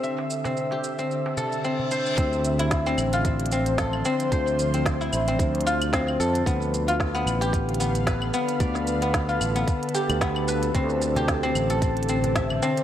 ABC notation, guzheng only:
X:1
M:4/4
L:1/16
Q:"Swing 16ths" 1/4=112
K:Ddor
V:1 name="Guzheng"
e3 C2 G2 C3 A z C z c z | C z2 E2 C2 F z2 C z A z C z | c3 C2 E2 C3 F z C z A z | B, z2 F2 B,2 G z2 B, z B z B, z |
d3 B,2 F2 B,3 G z B, z B z | C z2 G2 C2 A z2 C z e z C z |]